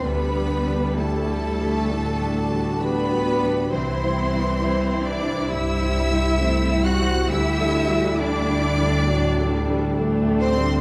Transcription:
<<
  \new Staff \with { instrumentName = "Violin section" } { \time 4/4 \key d \mixolydian \tempo 4 = 67 b''4 a''2 b''4 | c'''4. d'''8 e'''4. fis'''8 | e'''4 d'''2 r8 c'''8 | }
  \new Staff \with { instrumentName = "Violin section" } { \time 4/4 \key d \mixolydian b'4 a'2 b'4 | c''4. d''8 e''4. fis''8 | e''4 d''2 r8 c''8 | }
  \new Staff \with { instrumentName = "Grand piano" } { \time 4/4 \key d \mixolydian \tuplet 3/2 { d,8 <g d' g'>8 <g d' g'>8 <g d' g'>8 <g d' g'>8 <g d' g'>8 a,8 <g d' g'>8 <g d' g'>8 <g d' g'>8 <g d' g'>8 <g d' g'>8 } | \tuplet 3/2 { c,8 <g e' c''>8 <g e' c''>8 <g e' c''>8 <g e' c''>8 <g e' c''>8 g,8 <g e' c''>8 <g e' c''>8 <g e' c''>8 <g e' c''>8 <g e' c''>8 } | \tuplet 3/2 { d,8 <g d' a'>8 <g d' a'>8 <g d' a'>8 <g d' a'>8 <g d' a'>8 a,8 <g d' a'>8 <g d' a'>8 <g d' a'>8 <g d' a'>8 <g d' a'>8 } | }
  \new Staff \with { instrumentName = "Cello section" } { \time 4/4 \key d \mixolydian b4 a2 b4 | c'4. d'8 e'4. fis'8 | e'4 d'2 r8 c'8 | }
  \new Staff \with { instrumentName = "Viola section" } { \time 4/4 \key d \mixolydian << { d'4 e'4 d'4 d'8 d'8 | e'4 e'2 c'4 | g'8 fis'8 e'4 d'4 d'4 | } \\ { g8 g4. a8 fis'4. | e2 g4 a8 g8 | g4 a4 fis8 g8 a4 | } >> }
  \new Staff \with { instrumentName = "Double bass section" } { \clef bass \time 4/4 \key d \mixolydian d,1 | c,1 | d,1 | }
>>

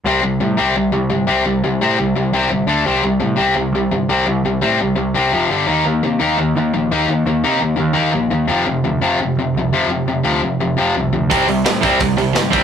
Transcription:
<<
  \new Staff \with { instrumentName = "Distorted electric guitar" } { \clef bass \time 4/4 \key f \lydian \tempo 4 = 171 r1 | r1 | r1 | r1 |
r1 | r1 | r1 | r1 |
<c g c'>8 <c g>8 <c g>8 <c g c'>8 <c g>8 <c g>8 <c g>8 <c g c'>8 | }
  \new Staff \with { instrumentName = "Distorted electric guitar" } { \clef bass \time 4/4 \key f \lydian <c g c'>8 <c g>8 <c g>8 <c g c'>8 <c g>8 <c g>8 <c g>8 <c g c'>8 | <c g>8 <c g>8 <c g c'>8 <c g>8 <c g>8 <c g c'>8 <c g>8 <d a d'>8 | <c g c'>8 <c g>8 <c g>8 <c g c'>8 <c g>8 <c g>8 <c g>8 <c g c'>8 | <c g>8 <c g>8 <c g c'>8 <c g>8 <c g>8 <c g c'>8 <f, c f>8 <g, d g>8 |
<ees bes ees'>8 <ees bes>8 <ees bes>8 <ees bes ees'>8 <ees bes>8 <ees bes>8 <ees bes>8 <ees bes ees'>8 | <ees bes>8 <ees bes>8 <ees bes ees'>8 <ees bes>8 <ees bes>8 <ees bes ees'>8 <ees bes>8 <ees bes>8 | <f, c f>8 <f, c>8 <f, c>8 <f, c f>8 <f, c>8 <f, c>8 <f, c>8 <f, c f>8 | <f, c>8 <f, c>8 <f, c f>8 <f, c>8 <f, c>8 <f, c f>8 <f, c>8 <f, c>8 |
<c g c'>8 <c g>8 <c g>8 <c g c'>8 <c g>8 <c g>8 <c g>8 <c g c'>8 | }
  \new Staff \with { instrumentName = "Picked electric bass" } { \clef bass \time 4/4 \key f \lydian c,8 c,8 a,8 c,8 c,8 c,8 g,,8 c,8 | c,8 c,8 a,8 c,8 c,8 c,8 g,,8 d,8 | c,8 c,8 a,8 c,8 c,8 c,8 g,,8 c,8 | c,8 c,8 a,8 c,8 c,8 c,8 f,,8 g,,8 |
ees,8 ees,8 c8 ees,8 ees,8 ees,8 bes,,8 ees,8 | ees,8 ees,8 c8 ees,8 ees,8 ees,8 bes,,8 ees,8 | f,,8 f,,8 d,8 f,,8 f,,8 f,,8 c,8 f,,8 | f,,8 f,,8 d,8 f,,8 f,,8 f,,8 c,8 d,8 |
c,8 c,8 a,8 c,8 c,8 c,8 g,,8 c,8 | }
  \new DrumStaff \with { instrumentName = "Drums" } \drummode { \time 4/4 r4 r4 r4 r4 | r4 r4 r4 r4 | r4 r4 r4 r4 | r4 r4 r4 r4 |
r4 r4 r4 r4 | r4 r4 r4 r4 | r4 r4 r4 r4 | r4 r4 r4 r4 |
<hho bd>8 hho8 <hho sn>8 <hho bd>8 <hho bd>8 hho8 <hho sn>8 <hho bd>8 | }
>>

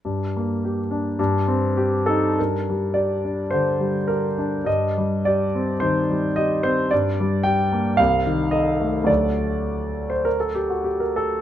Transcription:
<<
  \new Staff \with { instrumentName = "Grand piano" } { \time 4/4 \key g \minor \tempo 4 = 106 r2. r8 a'8 | bes'4 d''4 c''4 bes'4 | ees''4 d''4 c''4 ees''8 c''8 | d''4 g''4 f''4 ees''4 |
d''4.~ d''16 c''16 bes'16 a'16 g'16 fis'16 g'16 bes'16 a'8 | }
  \new Staff \with { instrumentName = "Grand piano" } { \time 4/4 \key g \minor g,8 bes8 g'8 d'8 g,8 c'8 g'8 ees'8 | g,8 g8 g'8 d'8 d8 g8 g'8 d'8 | g,8 g8 g'8 c'8 ees8 g8 g'8 c'8 | g,8 g8 g'8 bes8 c,8 ees8 a'8 a8 |
<d, fis a a'>1 | }
>>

